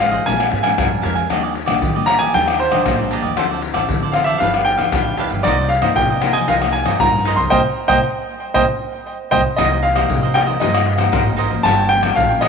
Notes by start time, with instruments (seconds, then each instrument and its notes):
Already playing: upright bass A1, nylon-string guitar C3
0.00 nylon-string guitar G#3 D#4 G4, cavaquinho F4 G#4 C5 D#5, grand piano F5
0.11 cavaquinho G#4 C5 D#5, pandeiro, shaker, surdo
0.26 upright bass A#1, nylon-string guitar A#2 G#3 C4 D4, cavaquinho D4 A#4 F5 G#5, grand piano G#5, pandeiro, shaker, surdo
0.39 cavaquinho A#4 F5 G#5, pandeiro, tamborim, shaker
0.51 upright bass G#2, muted cavaquinho stroke, pandeiro, shaker
0.63 nylon-string guitar G#3 C4 D4, cavaquinho A#4 F5 G#5, pandeiro, tamborim, shaker
0.78 upright bass G2, nylon-string guitar F3, cavaquinho D4 A#4 F5 G#5, pandeiro, tamborim, shaker, surdo
0.92 pandeiro, shaker, surdo
1.02 upright bass F2, nylon-string guitar G#3 C4 D4, cavaquinho D4 A#4 F5 G#5, pandeiro, shaker
1.15 cavaquinho A#4 F5 G#5, pandeiro, shaker, surdo
1.30 upright bass D#2, nylon-string guitar D#3 G3 A#3 D4, cavaquinho D4 G4 D5 D#5, pandeiro, tamborim, shaker, surdo
1.43 cavaquinho G4 D5 D#5, pandeiro, shaker
1.55 muted cavaquinho stroke, pandeiro, shaker
1.66 upright bass A#1, nylon-string guitar G3 A#3 D4, cavaquinho G4 D5 D#5, pandeiro, tamborim, shaker, surdo
1.82 nylon-string guitar A#2, upright bass D#3, pandeiro, shaker, surdo
1.95 nylon-string guitar G3 A#3 D4, cavaquinho G4 D5 D#5, pandeiro, shaker
2.06 cavaquinho D4 G4 D5 D#5, grand piano A#5, pandeiro, tamborim
2.19 cavaquinho G4 D5 D#5, grand piano G#5, pandeiro, shaker, surdo
2.34 upright bass D#2, nylon-string guitar D#3 G3 A#3 D4, cavaquinho D4 G4 D5 D#5, grand piano G5, pandeiro, shaker, surdo
2.47 cavaquinho G4 D5 D#5, pandeiro, tamborim, shaker
2.59 grand piano C5, muted cavaquinho stroke, pandeiro, shaker
2.71 upright bass A#1, nylon-string guitar G3 A#3 D4, cavaquinho G4 D5 D#5, pandeiro, tamborim, shaker
2.85 upright bass A#1, nylon-string guitar A#2, cavaquinho D4 G4 D5 D#5, pandeiro, tamborim, shaker, surdo
2.98 nylon-string guitar G3 A#3 D4, pandeiro, shaker, surdo
3.11 cavaquinho D4 G4 D5 D#5, pandeiro, shaker
3.22 upright bass D#2, cavaquinho G4 D5 D#5, pandeiro, shaker, surdo
3.37 upright bass D2, nylon-string guitar D3 F3 C4 E4, cavaquinho F4 A4 C5 D5, pandeiro, tamborim, shaker, surdo
3.50 nylon-string guitar F3 C4 E4, cavaquinho A4 C5 D5, pandeiro, shaker
3.62 muted cavaquinho stroke, pandeiro, shaker
3.74 upright bass A1, cavaquinho A4 C5 D5, pandeiro, tamborim, shaker, surdo
3.89 nylon-string guitar A2 F3 C4 E4, upright bass D3, pandeiro, shaker, surdo
4.02 cavaquinho A4 C5 D5, pandeiro, shaker
4.12 nylon-string guitar F3 C4 E4, cavaquinho F4 A4 C5, grand piano F5, pandeiro, tamborim, shaker
4.16 cavaquinho D5
4.24 cavaquinho C5 D5, grand piano E5, pandeiro, shaker, surdo
4.29 cavaquinho A4
4.38 upright bass G1, nylon-string guitar G2 F3 B3 D#4, cavaquinho D4 G4, grand piano F5, pandeiro, shaker, surdo
4.42 cavaquinho B4 F5
4.54 cavaquinho G4 B4 F5, pandeiro, tamborim, shaker
4.65 grand piano G5, muted cavaquinho stroke, pandeiro, shaker
4.77 upright bass D2, nylon-string guitar F3 B3 D#4, cavaquinho G4 B4 F5, pandeiro, tamborim, shaker
4.92 upright bass D2, nylon-string guitar D3, cavaquinho D4 G4 B4 F5, pandeiro, tamborim, shaker, surdo
5.06 pandeiro, shaker, surdo
5.18 nylon-string guitar F3 B3 D#4, cavaquinho D4 G4 B4 F5, pandeiro
5.30 upright bass G1, cavaquinho G4 B4 F5, pandeiro, shaker, surdo
5.43 upright bass C2, nylon-string guitar C3 F3 A#3 D#4, cavaquinho D#4 A#4 C5 D#5, grand piano D5, pandeiro, tamborim, shaker, surdo
5.57 cavaquinho A#4 C5, pandeiro, shaker
5.69 grand piano F5, muted cavaquinho stroke, pandeiro
5.82 upright bass G2, nylon-string guitar F3 A#3 D#4, cavaquinho A#4 C5 D#5, pandeiro, tamborim, shaker, surdo
5.96 nylon-string guitar G2, upright bass C3, grand piano G5, pandeiro, shaker, surdo
6.10 cavaquinho A#4 C5 D#5, pandeiro, shaker
6.22 nylon-string guitar F3 A#3 D#4, cavaquinho D#4 A#4 C5 D#5, pandeiro, tamborim, shaker
6.33 cavaquinho A#4 C5 D#5, grand piano G#5, pandeiro, shaker, surdo
6.48 upright bass C2, nylon-string guitar C3, cavaquinho D#4 A#4 C5 D#5, grand piano F5, pandeiro, shaker, surdo
6.61 nylon-string guitar F3 A#3 D#4, cavaquinho A#4 C5 D#5, pandeiro, tamborim, shaker
6.73 grand piano G#5, muted cavaquinho stroke, pandeiro, shaker
6.85 upright bass G2, cavaquinho A#4 C5 D#5, pandeiro, tamborim, shaker
7.00 nylon-string guitar G2 F3 A#3 D#4, upright bass G2, cavaquinho D#4 A#4 C5 D#5, grand piano A#5, pandeiro, tamborim, shaker, surdo
7.14 pandeiro, shaker, surdo
7.25 cavaquinho D#4 A#4 C5 D#5, pandeiro, shaker
7.36 upright bass C2, cavaquinho A#4 C5 D#5, grand piano C6, pandeiro, shaker, surdo
7.50 upright bass C2, nylon-string guitar G3 A#3 C4, cavaquinho A#4 C5 D#5, grand piano C5 D#5 G5, surdo
7.88 upright bass C2, nylon-string guitar G3 A#3 C4, cavaquinho A#4 C5 D#5, grand piano C5 D#5 G5, surdo
8.54 upright bass C2, nylon-string guitar G3 A#3 C4, cavaquinho A#4 C5 D#5, grand piano C5 D#5 G5, surdo
9.31 upright bass C2, nylon-string guitar G3 A#3 C4, cavaquinho A#4 C5 D#5, grand piano C5 D#5 G5, surdo
9.56 upright bass C2, nylon-string guitar C3 A#3 D#4 G4, cavaquinho D#4 A#4 C5, grand piano D#5, pandeiro, tamborim, shaker, surdo
9.61 cavaquinho D#5
9.72 cavaquinho A#4 C5 D#5, pandeiro, shaker
9.83 grand piano F5, muted cavaquinho stroke, pandeiro, shaker
9.95 nylon-string guitar A#3 D#4 G4, cavaquinho A#4 C5 D#5, pandeiro, tamborim, shaker, surdo
10.10 nylon-string guitar G2, upright bass C3, pandeiro, shaker, surdo
10.23 cavaquinho A#4 C5 D#5, pandeiro, shaker
10.34 nylon-string guitar A#3 D#4 G4, cavaquinho D#4 A#4 C5 D#5, grand piano G5, pandeiro, tamborim, shaker
10.47 cavaquinho A#4 C5 D#5, pandeiro, shaker, surdo
10.60 upright bass G2, nylon-string guitar C3 A#3 D#4 G4, cavaquinho D#4 A#4 C5 D#5, grand piano D#5, pandeiro, shaker, surdo
10.73 cavaquinho A#4 C5 D#5, pandeiro, tamborim, shaker
10.86 muted cavaquinho stroke, pandeiro, shaker
10.98 nylon-string guitar A#3 D#4 G4, cavaquinho A#4 C5 D#5, pandeiro, tamborim, shaker
11.12 upright bass G#1, nylon-string guitar G2, cavaquinho D#4 A#4 C5 D#5, pandeiro, tamborim, shaker, surdo
11.27 nylon-string guitar A#3 D#4 G4, pandeiro, shaker, surdo
11.37 cavaquinho D#4 A#4 C5 D#5, pandeiro, shaker, surdo
11.49 nylon-string guitar F3 A#3 C#4, cavaquinho A#4 C5 D#5, pandeiro, shaker, surdo
11.63 upright bass G1, nylon-string guitar G2, cavaquinho F4 A#4 C#5 G5, grand piano A5, pandeiro, tamborim, shaker, surdo
11.77 cavaquinho A#4 C#5 G5, pandeiro, shaker
11.89 nylon-string guitar F3 A#3 C#4, grand piano G5, muted cavaquinho stroke, pandeiro, shaker
12.01 cavaquinho A#4 C#5 G5, pandeiro, tamborim, shaker, surdo
12.16 upright bass A#1, nylon-string guitar G2, grand piano F5, pandeiro, shaker, surdo
12.29 nylon-string guitar F3 A#3 C#4, cavaquinho A#4 C#5 G5, pandeiro, shaker
12.41 cavaquinho F4 A#4 C#5 G5, grand piano D#5, pandeiro, tamborim